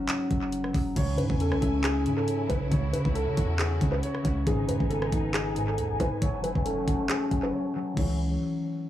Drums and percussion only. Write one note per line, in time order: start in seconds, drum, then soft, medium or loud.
0.09 clap loud
0.09 closed hi-hat medium
0.31 kick loud
0.31 closed hi-hat medium
0.52 closed hi-hat medium
0.64 cross-stick medium
0.74 kick loud
0.74 open hi-hat medium
0.96 kick loud
0.96 closed hi-hat medium
0.96 crash medium
1.18 closed hi-hat medium
1.30 kick medium
1.40 closed hi-hat medium
1.52 cross-stick loud
1.62 kick loud
1.62 closed hi-hat medium
1.84 clap loud
1.84 closed hi-hat medium
2.06 closed hi-hat medium
2.28 closed hi-hat medium
2.50 kick loud
2.50 closed hi-hat medium
2.72 kick loud
2.72 closed hi-hat medium
2.94 closed hi-hat medium
3.05 kick medium
3.15 closed hi-hat medium
3.37 kick loud
3.37 closed hi-hat medium
3.59 clap loud
3.59 closed hi-hat medium
3.81 kick loud
3.81 closed hi-hat medium
4.03 closed hi-hat medium
4.15 cross-stick medium
4.25 kick loud
4.25 closed hi-hat medium
4.47 kick loud
4.47 closed hi-hat medium
4.69 closed hi-hat medium
4.80 kick medium
4.91 closed hi-hat medium
5.02 cross-stick loud
5.12 kick loud
5.12 closed hi-hat medium
5.34 clap loud
5.34 closed hi-hat medium
5.56 closed hi-hat medium
5.78 closed hi-hat medium
6.00 kick loud
6.00 closed hi-hat medium
6.22 kick loud
6.22 closed hi-hat medium
6.44 closed hi-hat medium
6.55 kick medium
6.66 closed hi-hat medium
6.88 kick loud
6.88 closed hi-hat medium
7.09 clap loud
7.09 closed hi-hat medium
7.31 kick loud
7.31 closed hi-hat medium
7.97 kick loud
7.97 crash medium